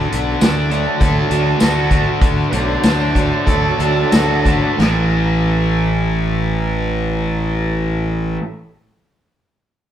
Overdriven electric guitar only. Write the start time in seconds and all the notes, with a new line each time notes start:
Already playing: D3 A3 A4
0.12 D4
0.41 A3
0.70 D4
1.00 A4
1.29 F#4
1.60 A4
1.91 D4
2.21 D3
2.51 D4
2.83 A3
3.15 D4
3.46 A4
3.79 F#4
4.11 A4
4.45 D4
4.78 A2 E3
4.82 A3